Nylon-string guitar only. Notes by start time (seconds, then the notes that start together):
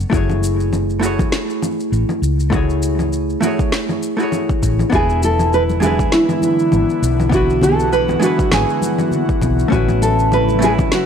4.95 G#4
5.24 A4
5.54 B4
5.82 G#4
6.14 E4
7.34 F#4
7.63 A4
7.93 B4
8.22 F#4
8.53 G#4
9.72 F#4
10.02 A4
10.33 B4
10.64 G#4
10.94 F#4